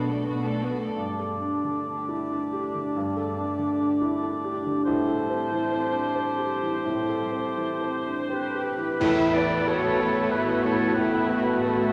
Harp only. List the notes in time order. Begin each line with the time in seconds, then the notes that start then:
Already playing: B2 F#3 D4 F#4 A4
0.28 F#4
0.63 A4
0.98 G2
1.31 G3
1.65 A4
1.98 G4
2.31 A4
2.63 D4
2.95 G2
3.26 G3
3.58 A4
3.89 G4
4.21 A4
4.55 D4
4.87 A2
5.20 G3
5.51 A4
5.83 G4
6.16 A4
6.50 C4
6.86 A2
7.21 G3
7.57 A4
7.95 G4
8.31 A4
8.68 C4
9.02 A2
9.36 A3
9.68 B3
10.01 B4
10.34 A4
10.67 B4
10.99 A2
11.32 A3
11.63 B3